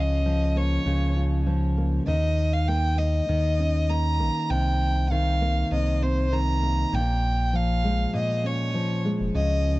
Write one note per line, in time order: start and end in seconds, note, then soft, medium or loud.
0.00 0.79 C#2 loud
0.00 0.85 C#3 medium
0.00 0.25 F3 medium
0.00 0.56 G#3 medium
0.00 1.16 C#4 medium
0.00 0.58 D#5 medium
0.26 1.45 F3 medium
0.56 1.77 A#3 medium
0.56 1.17 C#5 medium
0.86 2.00 C#2 medium
0.86 2.14 C#3 medium
1.17 2.14 F4 medium
1.47 2.07 F3 medium
1.77 2.68 A#3 medium
2.07 3.22 D#2 medium
2.07 3.28 D#3 medium
2.07 2.55 D#5 medium
2.53 2.70 F5 medium
2.68 2.98 A#3 medium
2.68 2.99 G5 loud
2.98 3.89 A#3 medium
2.98 3.91 D#5 medium
3.29 4.21 D#2 medium
3.29 5.11 D#3 medium
3.59 4.56 C#4 medium
3.89 4.19 A#3 medium
3.89 4.52 A#5 medium
4.20 4.30 A#1 medium
4.20 5.41 A#3 medium
4.50 5.64 C2 loud
4.50 5.70 C3 medium
4.50 5.13 G5 loud
5.11 6.31 D#3 medium
5.11 5.72 F5 loud
5.42 6.62 A#3 medium
5.71 6.85 C2 medium
5.71 6.92 C3 medium
5.71 6.04 D#5 medium
6.01 6.99 C4 medium
6.01 6.34 C5 medium
6.32 6.99 D#3 medium
6.32 6.96 A#5 medium
6.63 7.83 A#3 medium
6.93 8.07 A#1 loud
6.93 8.12 A#2 medium
6.93 7.57 G5 medium
7.53 8.74 F3 medium
7.53 8.15 F5 loud
7.84 9.04 G#3 medium
8.14 9.34 A#2 medium
8.14 8.48 D#5 medium
8.44 9.80 C#4 medium
8.44 9.06 C#5 medium
8.74 9.80 F3 medium
9.05 9.80 G#3 medium
9.20 9.31 F1 medium
9.34 9.80 C#2 loud
9.34 9.80 C#3 medium
9.34 9.80 D#5 medium